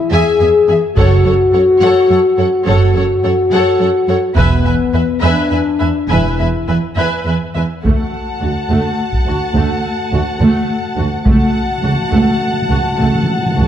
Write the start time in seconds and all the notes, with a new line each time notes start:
Already playing: E4
0.10 E2 G#4 E5 G#5
0.40 E2 G#4 E5 G#5
0.68 E2 G#4 E5 G#5
0.96 F#1 F#2 F#4 A4 C#5 F#5, taiko
1.25 F#2 A4 C#5 F#5
1.53 F#2 A4 C#5 F#5
1.81 F#2 A4 C#5 F#5
2.09 F#2 A4 C#5 F#5
2.38 F#2 A4 C#5 F#5
2.66 F#1 F#2 F#4 A4 C#5 F#5
2.95 F#2 A4 C#5 F#5
3.24 F#2 A4 C#5 F#5
3.51 F#2 A4 C#5 F#5
3.80 F#2 A4 C#5 F#5
4.08 F#2 A4 C#5 F#5
4.36 E1 E2 B3 B4 E5 G#5, taiko
4.64 E2 B4 E5 G#5
4.93 E2 B4 E5 G#5
5.21 E2 D4 B4 E5 G#5
5.50 E2 B4 E5 G#5
5.80 E2 B4 E5 G#5
6.09 E1 E2 E4 B4 E5 G#5
6.39 E2 B4 E5 G#5
6.68 E2 B4 E5 G#5
6.97 E2 B4 E5 G#5
7.25 E2 B4 E5 G#5
7.55 E2 B4 E5 G#5
7.84 D2 A3 F#4 F#5 A5, taiko
8.41 D2 F#4
8.70 D2 A3
9.13 taiko
9.26 D2 F#4
9.55 D2 A3
10.12 D2 F#4
10.40 D2 A3
10.97 D2 F#4
11.26 C#2 A3 F#4 F#5 A5, taiko
11.49 C#3
11.56 C#3
11.63 C#3
11.71 C#3
11.78 C#3
11.83 C#2 C#3 F#4
11.92 C#3
12.00 C#3
12.07 C#3
12.11 C#2 C#3 A3
12.23 C#3
12.31 C#3
12.38 C#3
12.46 C#3
12.53 C#3
12.62 C#3
12.69 C#2 C#3 F#4
12.77 C#3
12.85 C#3
12.91 C#3
12.99 C#2 C#3 A3, cymbal swell
13.07 C#3
13.15 C#3
13.23 C#3
13.31 C#3
13.39 C#3
13.46 C#3
13.54 C#2 C#3
13.58 C#3 F#4